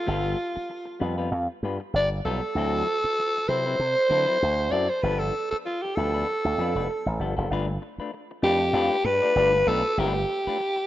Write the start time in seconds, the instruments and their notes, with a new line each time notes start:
Already playing: alto saxophone F4
0.06 slap bass G1, clean electric guitar G3 B3 F4 A4
0.56 muted clean electric guitar stroke, muted slap bass stroke
0.70 muted clean electric guitar stroke
0.85 muted clean electric guitar stroke
1.00 slap bass F2, clean electric guitar G3 B3 F4 B4
1.18 clean electric guitar G3 B3 F4 B4
1.32 slap bass F2, muted clean electric guitar stroke
1.63 slap bass G2, clean electric guitar G3 B3 F4 B4
1.80 muted clean electric guitar stroke
1.93 slap bass G1, alto saxophone D5, muted clean electric guitar stroke
2.25 slap bass B1, clean electric guitar G3 B3 F4 A4, alto saxophone A4
2.42 muted clean electric guitar stroke
2.55 slap bass D2, clean electric guitar F#3 C4 E4 A4
3.04 muted slap bass stroke, muted clean electric guitar stroke
3.19 muted clean electric guitar stroke
3.37 muted clean electric guitar stroke
3.49 slap bass C3, clean electric guitar F#3 C4 E4 B4, alto saxophone C5
3.66 clean electric guitar F#3 C4 E4 B4
3.79 slap bass C3, muted clean electric guitar stroke
3.97 muted clean electric guitar stroke
4.09 slap bass D3, clean electric guitar F#3 C4 E4 B4
4.26 clean electric guitar F#3 C4 E4 B4
4.42 slap bass D2
4.71 slap bass F#2, clean electric guitar F#3 C4 E4 A4, alto saxophone D5
4.89 alto saxophone C5, muted clean electric guitar stroke
5.02 slap bass G1, clean electric guitar F3 B3 D4 A4, alto saxophone B4
5.20 alto saxophone A4
5.51 alto saxophone A4, muted slap bass stroke, muted clean electric guitar stroke
5.65 alto saxophone F4, muted clean electric guitar stroke
5.82 alto saxophone G4, muted clean electric guitar stroke
5.95 slap bass D2, clean electric guitar F3 B3 D4 B4, alto saxophone A4
6.14 clean electric guitar F3 B3 D4 B4
6.30 muted clean electric guitar stroke
6.45 slap bass D2, muted clean electric guitar stroke
6.58 slap bass F2, clean electric guitar F3 B3 D4 B4
6.75 slap bass F1, clean electric guitar F3 B3 D4 B4
6.90 muted clean electric guitar stroke
7.06 slap bass A1, muted clean electric guitar stroke
7.20 slap bass G1, clean electric guitar F3 B3 D4 A4
7.37 slap bass F#1, clean electric guitar F3 B3 D4 A4
7.50 slap bass G1, clean electric guitar A3 D4 F4 B4
7.68 muted clean electric guitar stroke
7.82 muted clean electric guitar stroke
7.98 clean electric guitar A3 D4 F4 B4, muted slap bass stroke
8.14 muted clean electric guitar stroke
8.31 muted clean electric guitar stroke
8.42 slap bass F2, clean electric guitar A3 D4 F4 B4, alto saxophone G4
8.61 muted clean electric guitar stroke
8.73 slap bass F2, clean electric guitar A3 D4 F4 B4
9.04 slap bass G2, alto saxophone B4, muted clean electric guitar stroke
9.22 clean electric guitar A3 D4 F4 D5
9.35 slap bass G1, clean electric guitar A3 D4 F4 D5
9.54 muted clean electric guitar stroke
9.66 slap bass B1, clean electric guitar A3 D4 F4 B4, alto saxophone A4
9.97 slap bass G1, clean electric guitar A3 D4 F4 B4, alto saxophone G4
10.15 muted clean electric guitar stroke
10.29 muted clean electric guitar stroke
10.47 clean electric guitar A3 D4 F4 B4, muted slap bass stroke
10.60 muted clean electric guitar stroke
10.76 muted clean electric guitar stroke